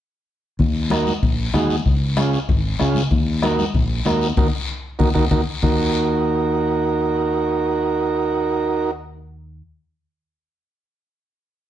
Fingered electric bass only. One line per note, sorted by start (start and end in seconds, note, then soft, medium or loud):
0.59 1.10 D#2 medium
1.23 1.48 A#1 medium
1.54 1.79 D#2 medium
1.86 2.36 C#2 medium
2.49 2.74 G#1 medium
2.81 3.06 C#2 medium
3.11 3.62 D#2 loud
3.75 4.00 A#1 loud
4.06 4.31 D#2 medium
4.38 4.49 D#2 medium
5.00 5.12 D#2 medium
5.16 5.27 D#2 medium
5.31 5.43 D#2 medium
5.63 9.61 D#2 medium